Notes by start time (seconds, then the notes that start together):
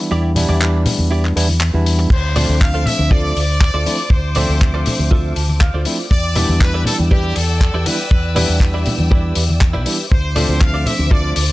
Already playing: E3 G3 B3 D4 E4
0.11 E2 E4 G4 D5
0.35 E3 G3 B3 D4 E4, open hi-hat, low conga
0.49 E2 E4 G4 D5, high conga
0.61 clap
0.86 open hi-hat, low conga
0.98 E2, high conga
1.11 E4 G4 D5
1.25 clap
1.36 E2 E3 G3 B3 D4 E4, muted clean electric guitar stroke, open hi-hat
1.49 high conga
1.61 clap
1.74 E2 E3 G3 B3 D4 E4, high conga
1.86 open hi-hat
1.99 muted clean electric guitar stroke
2.10 D2 C5 D6, kick, crash
2.35 F3 A3 C4 D4 F4 A4 C5 D5, open hi-hat, low conga
2.49 D2, high conga
2.61 F5, kick, clap
2.74 F4 A4 C5 F5
2.86 E5, open hi-hat, low conga
2.99 D2, high conga
3.11 F4 A4 C5 D5, kick
3.36 D2, open hi-hat
3.61 kick, clap
3.74 D2 F4 A4 C5 D5
3.86 F3 A3 C4 D4 E4, open hi-hat, high conga
4.10 D2 C5, kick
4.35 F3 A3 C4 D4 F4 A4 C5 D5 E5, open hi-hat, low conga
4.49 D2
4.61 kick, clap
4.74 F4 A4 C5 D5
4.86 open hi-hat, low conga
4.99 D2, high conga
5.11 F4 A4 C5 E5, kick
5.36 D2 A5, open hi-hat
5.49 high conga
5.61 F5, kick, clap
5.74 D2 F4 A4 C5 D5
5.85 F3 A3 C4 D4 E4 D5, open hi-hat
6.11 E2 D5 G5 E6, kick
6.35 E3 G3 B3 D4 E4 G4 B4 D5, open hi-hat, low conga
6.49 E2, high conga
6.61 B4, kick, clap
6.74 E4 G4 B4 D5
6.85 A4, open hi-hat, low conga
6.99 E2, high conga
7.11 E4 G4 B4 D5, kick
7.36 E2 A4, open hi-hat
7.61 kick, clap
7.74 E2 E4 G4 B4 D5
7.86 E3 G3 B3 D4 E4 B4, open hi-hat, high conga
8.11 E2, kick
8.35 E3 G3 B3 D4 E4 G4 B4 D5, open hi-hat, low conga
8.49 E2
8.60 kick, clap
8.74 E4 G4 B4 D5
8.86 open hi-hat, low conga
8.98 E2, high conga
9.11 E4 G4 B4 D5, kick
9.35 E2, open hi-hat
9.49 high conga
9.61 kick, clap
9.73 B1 E4 G4 B4 D5
9.86 E3 G3 B3 D4 E4, open hi-hat
10.11 D2 C5 D6, kick
10.35 F3 A3 C4 D4 F4 A4 C5 D5 E5, open hi-hat, low conga
10.49 D2, high conga
10.61 F5, kick, clap
10.74 F4 A4 C5 D5
10.86 E5, open hi-hat, low conga
10.99 D2, high conga
11.11 F4 A4 C5 D5, kick
11.36 D2 D5, open hi-hat